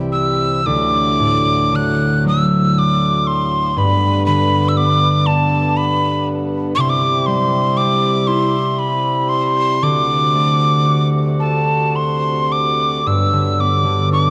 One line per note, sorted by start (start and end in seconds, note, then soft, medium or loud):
0.00 0.69 C2 medium
0.00 0.61 C3 medium
0.00 0.69 C3 soft
0.00 0.69 E3 soft
0.00 0.61 G3 medium
0.00 0.61 E4 medium
0.12 0.68 E6 medium
0.63 3.72 D2 medium
0.63 3.81 D2 medium
0.63 3.72 A2 medium
0.63 3.73 F#3 medium
0.63 1.77 D6 medium
1.20 1.77 A2 soft
1.71 3.81 D3 soft
1.76 2.26 F#6 medium
2.24 3.81 F#3 soft
2.24 2.80 E6 medium
2.79 3.29 D6 medium
3.27 3.80 C6 medium
3.76 6.74 G2 medium
3.76 6.81 G2 medium
3.76 6.74 D3 medium
3.76 6.74 B3 medium
3.76 4.25 B5 medium
4.26 6.81 D3 soft
4.26 4.70 B5 medium
4.68 4.79 E6 medium
4.77 6.83 B3 medium
4.77 5.28 D6 medium
5.26 8.07 D4 soft
5.26 5.78 A5 medium
5.77 6.27 B5 medium
6.75 13.01 C3 medium
6.75 9.87 C3 medium
6.75 9.79 G3 medium
6.75 9.79 E4 medium
6.75 6.82 D6 medium
6.80 6.91 C6 medium
6.89 7.28 D6 loud
7.27 9.87 G3 medium
7.27 7.79 C6 loud
7.77 10.77 C4 medium
7.77 8.29 D6 medium
8.28 10.89 E4 soft
8.28 8.80 C6 medium
8.79 9.30 B5 medium
9.29 9.85 C6 medium
9.82 13.03 D2 medium
9.82 13.10 D3 medium
9.82 13.02 F#4 medium
9.82 11.09 D6 medium
10.35 13.67 A3 soft
10.85 13.12 F#4 soft
11.40 13.59 A4 soft
11.40 11.97 A5 medium
11.96 12.54 C6 medium
12.52 13.09 D6 medium
13.06 14.30 G2 medium
13.06 14.30 F#3 medium
13.06 14.30 B3 medium
13.06 13.62 E6 medium
13.33 13.84 D3 soft
13.59 14.30 B3 soft
13.59 14.12 D6 medium
13.85 14.30 D3 soft
14.12 14.30 D4 soft
14.12 14.30 D6 medium